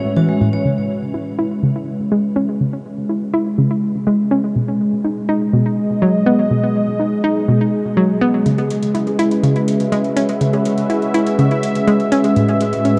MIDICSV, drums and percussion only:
0, 0, Header, 1, 2, 480
1, 0, Start_track
1, 0, Key_signature, 4, "minor"
1, 0, Tempo, 487805
1, 644, Time_signature, 4, 2, 24, 8
1, 12787, End_track
2, 0, Start_track
2, 0, Title_t, "Drums"
2, 8324, Note_on_c, 9, 42, 54
2, 8422, Note_off_c, 9, 42, 0
2, 8445, Note_on_c, 9, 42, 25
2, 8445, Note_on_c, 9, 61, 74
2, 8543, Note_off_c, 9, 42, 0
2, 8543, Note_off_c, 9, 61, 0
2, 8565, Note_on_c, 9, 42, 85
2, 8664, Note_off_c, 9, 42, 0
2, 8685, Note_on_c, 9, 42, 51
2, 8783, Note_off_c, 9, 42, 0
2, 8804, Note_on_c, 9, 42, 53
2, 8903, Note_off_c, 9, 42, 0
2, 8925, Note_on_c, 9, 42, 26
2, 8925, Note_on_c, 9, 61, 47
2, 9023, Note_off_c, 9, 42, 0
2, 9023, Note_off_c, 9, 61, 0
2, 9044, Note_on_c, 9, 42, 91
2, 9142, Note_off_c, 9, 42, 0
2, 9165, Note_on_c, 9, 42, 51
2, 9263, Note_off_c, 9, 42, 0
2, 9284, Note_on_c, 9, 42, 54
2, 9383, Note_off_c, 9, 42, 0
2, 9405, Note_on_c, 9, 42, 25
2, 9503, Note_off_c, 9, 42, 0
2, 9524, Note_on_c, 9, 42, 96
2, 9622, Note_off_c, 9, 42, 0
2, 9644, Note_on_c, 9, 42, 53
2, 9742, Note_off_c, 9, 42, 0
2, 9764, Note_on_c, 9, 42, 53
2, 9862, Note_off_c, 9, 42, 0
2, 9883, Note_on_c, 9, 42, 26
2, 9982, Note_off_c, 9, 42, 0
2, 10004, Note_on_c, 9, 42, 94
2, 10102, Note_off_c, 9, 42, 0
2, 10124, Note_on_c, 9, 42, 51
2, 10222, Note_off_c, 9, 42, 0
2, 10243, Note_on_c, 9, 42, 57
2, 10342, Note_off_c, 9, 42, 0
2, 10364, Note_on_c, 9, 42, 26
2, 10364, Note_on_c, 9, 61, 74
2, 10463, Note_off_c, 9, 42, 0
2, 10463, Note_off_c, 9, 61, 0
2, 10484, Note_on_c, 9, 42, 87
2, 10582, Note_off_c, 9, 42, 0
2, 10604, Note_on_c, 9, 42, 49
2, 10703, Note_off_c, 9, 42, 0
2, 10724, Note_on_c, 9, 42, 51
2, 10823, Note_off_c, 9, 42, 0
2, 10845, Note_on_c, 9, 42, 24
2, 10944, Note_off_c, 9, 42, 0
2, 10965, Note_on_c, 9, 42, 87
2, 11064, Note_off_c, 9, 42, 0
2, 11085, Note_on_c, 9, 42, 52
2, 11184, Note_off_c, 9, 42, 0
2, 11206, Note_on_c, 9, 42, 48
2, 11206, Note_on_c, 9, 61, 65
2, 11305, Note_off_c, 9, 42, 0
2, 11305, Note_off_c, 9, 61, 0
2, 11326, Note_on_c, 9, 42, 25
2, 11425, Note_off_c, 9, 42, 0
2, 11445, Note_on_c, 9, 42, 94
2, 11544, Note_off_c, 9, 42, 0
2, 11566, Note_on_c, 9, 42, 55
2, 11664, Note_off_c, 9, 42, 0
2, 11686, Note_on_c, 9, 42, 50
2, 11784, Note_off_c, 9, 42, 0
2, 11806, Note_on_c, 9, 42, 26
2, 11905, Note_off_c, 9, 42, 0
2, 11925, Note_on_c, 9, 42, 88
2, 12023, Note_off_c, 9, 42, 0
2, 12045, Note_on_c, 9, 42, 51
2, 12045, Note_on_c, 9, 61, 50
2, 12143, Note_off_c, 9, 42, 0
2, 12143, Note_off_c, 9, 61, 0
2, 12165, Note_on_c, 9, 42, 53
2, 12264, Note_off_c, 9, 42, 0
2, 12285, Note_on_c, 9, 42, 26
2, 12285, Note_on_c, 9, 61, 81
2, 12384, Note_off_c, 9, 42, 0
2, 12384, Note_off_c, 9, 61, 0
2, 12404, Note_on_c, 9, 42, 89
2, 12503, Note_off_c, 9, 42, 0
2, 12525, Note_on_c, 9, 42, 50
2, 12623, Note_off_c, 9, 42, 0
2, 12644, Note_on_c, 9, 42, 53
2, 12743, Note_off_c, 9, 42, 0
2, 12787, End_track
0, 0, End_of_file